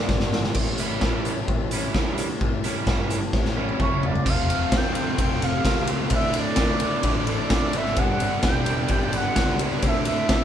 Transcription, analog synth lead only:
3.81 C#5
4.06 D5
4.29 F5
4.76 G5
5.21 G5
5.43 F5
6.15 E5
6.39 D5
7.53 D5
7.77 E5
7.98 F#5
8.45 G5
8.91 G5
9.15 F#5
9.87 E5
10.07 E5

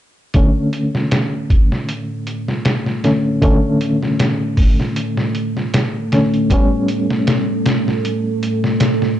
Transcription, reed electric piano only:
0.34 D3 A3 C#4
3.04 D3 A3 C#4
3.42 D3 A3 C#4
6.12 D3 A3 C#4
6.51 G3 B3 C#4

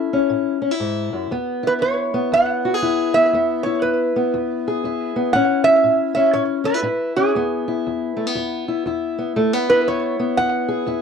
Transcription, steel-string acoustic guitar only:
Already playing: A2 C#4 E4
0.13 C#4
0.29 A2
0.62 C#4
0.71 E4
0.80 G#2
1.13 F#2
1.31 E2 B3
1.63 E4
1.81 E2
2.14 B3
2.32 E2
2.65 F#4
2.74 G#4
2.82 E2 E4
3.16 B3
3.33 E2 B3
3.66 E4
3.83 E2
4.16 B3
4.34 E2
4.68 G#4
4.84 E2 E4
5.16 B3
5.35 A2 C#4
5.66 E4
5.84 A2
6.16 C#4
6.34 A2
6.64 C#4
6.74 E4
6.82 A2 E4
7.17 C#4
7.35 E2 B3
7.68 E4
7.87 E2
8.17 A3
8.27 B3
8.35 E2
8.68 E4
8.86 E2 E4
9.18 B3
9.36 E2 A3
9.53 B3
9.70 E4
9.88 E2
10.19 B3
10.38 E2
10.68 G#4
10.86 E2 E4

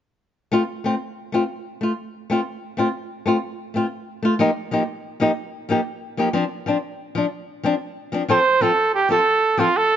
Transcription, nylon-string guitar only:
0.52 A3 C4 F4
0.84 A3 C4 F4
1.32 A3 C4 F4
1.81 A3 F4
2.30 A3 C4 F4
2.77 A3 C4 F4
3.26 A3 C4 F4
3.74 A3 C4 F4
4.23 A3 F4
4.39 F3 A#3 D#4 G4
4.71 F3 A#3 D#4 G4
5.20 F3 A#3 D#4 G4
5.69 F3 A#3 D#4 G4
6.17 F3 A#3 D#4 G4
6.33 F3 C4 D4
6.66 F3 C4 D4
7.15 F3 D4
7.63 F3 C4 D4
8.12 F3 C4 D4
8.28 F3 C4 F4 A4
8.61 F3 C4 F4 A4
9.09 F3 C4 F4 A4
9.57 F3 C4 F4 A4

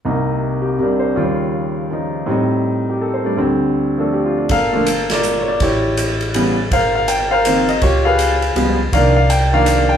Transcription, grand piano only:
0.05 C2 C3 A#3 D#4
0.62 G4
0.79 C3 G3 D4 A#4
0.99 C5
1.16 D#2 C#3 G3 F4
1.91 C#3 F3 D#4
2.26 A2 G3 C4
2.31 D#4
2.90 G4
3.01 A4
3.14 C5
3.23 G3 A3 D4 D5
3.37 D2 D3 G3 C4
3.98 F3 A3 D4 A4
4.13 G4
4.25 F4
4.38 D4
4.51 A4 A#4 F5
4.73 D3 F3 A3 A#3
5.12 F4 A#4 D5
5.41 C#5
5.48 D5
5.62 E4 G4 C#5
6.35 C#3 E3 G3 B3
6.73 A#4 C5 F5
6.95 F5
7.08 G5
7.31 A#4 C5 F5
7.45 D#3 F3 A#3 C4
7.69 D#5
7.82 F4 G4 C#5
8.05 G#4 B4 F5
8.56 F3 G3 G#3 B3
8.93 D#3 F3 A#3 D4 A#4 D5 F5
9.16 F5
9.30 G5
9.53 D#3 F3 A#3 D4 A#4 D5 F5
9.89 G5

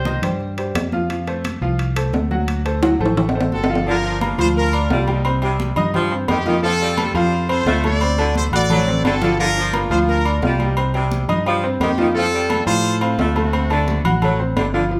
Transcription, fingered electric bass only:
Already playing: C2
0.22 G2
0.75 F2
1.61 C2
2.13 D2
2.99 A1
3.51 G1
4.38 D2
4.90 C2
5.76 G2
6.28 F2
7.14 F2
7.66 D2
8.52 A1
9.04 G1
9.90 D2
10.42 C2
11.28 G2
11.80 F2
12.66 A2
13.18 D2
14.04 A1
14.56 G1

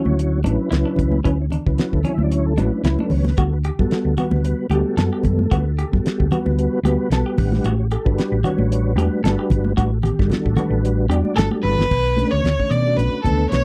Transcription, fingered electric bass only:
0.06 D2
0.45 A1
0.71 C#2
0.99 C#2
1.25 D2
1.67 C#2
1.78 muted fingered electric bass stroke
1.93 D2
2.18 D2
2.57 A1
2.83 C#2
3.11 C#2
3.38 D2
3.79 F#2
3.90 muted fingered electric bass stroke
4.05 D2
4.32 D2
4.70 D2
4.97 F#2
5.25 F#2
5.52 D2
5.93 F#2
6.05 muted fingered electric bass stroke
6.19 D2
6.46 D2
6.83 D2
7.10 B1
7.38 A1
7.64 A1
8.06 G1
8.17 muted fingered electric bass stroke
8.32 A1
8.58 A1
8.96 E2
9.24 G1
9.51 G1
9.77 A1
10.20 G1
10.30 muted fingered electric bass stroke
10.45 A1
10.70 A1
11.09 E2
11.36 G1
11.63 G1
11.91 B1
12.32 D2
12.44 D2
12.71 B2
12.97 B1
13.13 muted fingered electric bass stroke
13.25 D2
13.52 B1

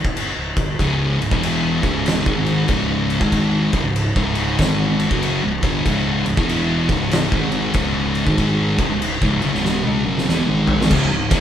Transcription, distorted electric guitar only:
0.79 C#2 G#2 C#3
1.20 C#2 G#2
1.31 E2 B2 E3
1.82 C#2 G#2 C#3
2.25 G#2 D#3 G#3
2.68 C#2 G#2 C#3
3.21 G#2 D#3 G#3
3.72 F#2 C#3
3.84 C#2 G#2
4.16 C#2 G#2 C#3
4.59 G#2 D#3 G#3
5.10 F#2 C#3 F#3
5.43 C#2 G#2
5.62 G2 D3 G3
5.85 C#2 G#2 C#3
6.26 C#2 G#2
6.37 E2 B2 E3
6.89 C#2 G#2 C#3
7.33 G#2 D#3 G#3
7.75 C#2 G#2 C#3
8.26 G#2 D#3 G#3
8.78 F#2 C#3
8.90 C#2 G#2
9.21 C#2 G#2
9.42 F#2 C#3
9.53 C#2 G#2 C#3
9.84 C#3 G#3
10.04 F#2 C#3 F#3
10.27 E2 B2
10.46 G#2 D#3 G#3
10.90 C#2 G#2
11.10 C#2 G#2
11.30 E2 B2 E3

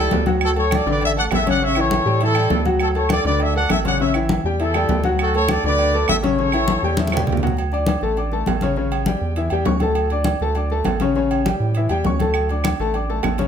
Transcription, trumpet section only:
Already playing: E4 A4
0.42 F#4 A4
0.58 A4 C#5
0.73 A4 D5
0.88 B4 D5
1.03 A4 E5
1.17 D5 F#5
1.32 A4 E5
1.48 D5 F#5
1.62 C#5 E5
1.77 A4 C#5
2.23 E4 A4
2.82 F#4 A4
2.96 A4 C#5
3.11 A4 D5
3.26 B4 D5
3.41 A4 E5
3.56 D5 F#5
3.71 A4 E5
3.86 D5 F#5
4.01 C#5 E5
4.61 E4 A4
5.21 F#4 A4
5.36 A4 C#5
5.51 A4 D5
5.65 B4 D5
6.10 A4 E5
6.24 A4 C#5

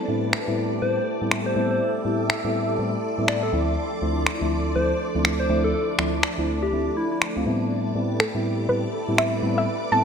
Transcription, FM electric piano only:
0.08 A2 G3 B3 C4 E4
0.47 A2 G3 B3 C4 E4
0.82 A2 G3 B3 C4 E4
1.21 A2 G3 B3 C4 E4
1.55 A2 G3 B3 C4 E4
2.04 A2 G3 B3 C4 E4
2.44 A2 G3 B3 C4 E4
2.78 A2 G3 B3 C4 E4
3.18 A2 G3 B3 C4 E4
3.52 D2 F3 A3 C4 E4
4.01 D2 F3 A3 C4 E4
4.41 D2 F3 A3 C4 E4
4.75 D2 F3 A3 C4 E4
5.14 D2 F3 A3 C4 E4
5.49 D2 F3 A3 C4 E4
5.98 D2 F3 A3 C4 E4
6.37 D2 F3 A3 C4 E4
6.72 D2 F3 A3 C4 E4
7.36 D2 F3 A3 C4 F4
7.45 A2 G3 B3 C4 E4
7.95 A2 G3 B3 C4 E4
8.34 A2 G3 B3 C4 E4
8.68 A2 G3 B3 C4 E4
9.08 A2 G3 B3 C4 E4
9.42 A2 G3 B3 C4 E4
9.91 A2 G3 B3 C4 E4

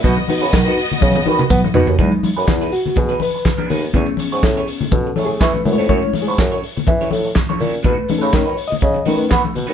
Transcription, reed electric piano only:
0.05 B2 F#3
0.20 F#4 B4
0.30 D#4 F#4 B4
0.54 B2 F#3
0.68 D#4 F#4 B4
0.78 F#4 B4
1.02 B2 F#3
1.26 D#4 F#4 B4
1.40 F#4 B4
1.50 B2 F#3
1.75 D#4 F#4 B4
1.88 F#4 B4
1.99 F#3 G#3 D#4
2.48 E4
2.72 F#4
2.97 G#4
3.22 B4
3.94 B3 C#4 G#4
4.93 A4
5.26 G#4
5.42 B4
5.65 G#3 A3 E4
5.73 C#5
5.89 C#5
6.22 G#4
7.86 B4
8.10 A3 C#4 D#4
8.19 A4
8.36 C#5
8.68 D#5
8.84 D#5
9.07 A3 C#4 D#4
9.17 B4

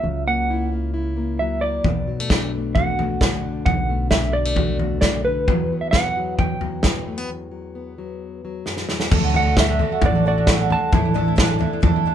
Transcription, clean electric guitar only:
Already playing: E5
0.28 F#5
1.39 E5
1.61 D5
2.75 F#5
3.66 F#5
4.11 E5
4.33 D5
5.01 D5
5.25 B4
5.81 E5
5.91 F#5
6.39 G5
9.36 F#5
9.60 E5
10.06 D5
10.28 D5
10.72 A5

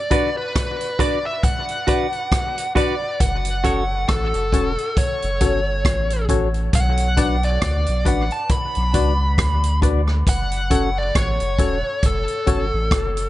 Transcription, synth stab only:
0.10 D4 F#4 B4 D5
0.99 D4 F#4 B4 D5
1.87 D4 F#4 B4 D5
2.75 D4 F#4 B4 D5
3.64 C#4 F#4 A4 C#5
4.53 C#4 F#4 A4 C#5
5.41 C#4 F#4 A4 C#5
6.29 C#4 F#4 A4 C#5
7.17 D4 F#4 B4 D5
8.05 D4 F#4 B4 D5
8.93 D4 F#4 B4 D5
9.82 D4 F#4 B4 D5
10.70 C#4 F#4 A4 C#5
11.58 C#4 F#4 A4 C#5
12.46 C#4 F#4 A4 C#5

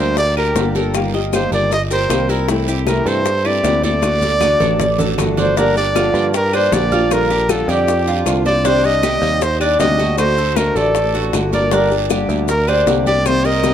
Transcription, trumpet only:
0.00 C5
0.18 D5
0.38 A#4
0.72 A#4
0.76 A4
1.35 C5
1.54 D5
1.74 D#5
1.93 C5
2.30 A#4
2.88 A#4
3.08 C5
3.46 D5
3.85 D5
5.39 C5
5.58 A#4
5.77 D5
6.36 A#4
6.55 C5
6.74 D5
7.13 A#4
7.51 A4
7.70 G4
8.47 D5
8.66 C5
8.85 D#5
9.43 C5
9.61 D5
9.80 D#5
10.18 C5
10.57 A#4
10.76 A4
11.54 D5
11.74 A#4
12.49 A#4
12.69 C5
13.07 D5
13.27 C5
13.45 D#5

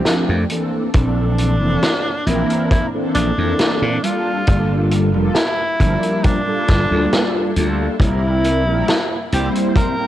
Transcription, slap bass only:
0.29 F2
0.94 A#1
1.61 F1
2.27 A#1
3.15 A#1
3.38 F2
3.82 A#2
4.48 G1
5.14 F1
5.80 G1
6.69 G1
6.91 D2
7.56 D2
8.00 C2
8.67 A#1
9.33 C2

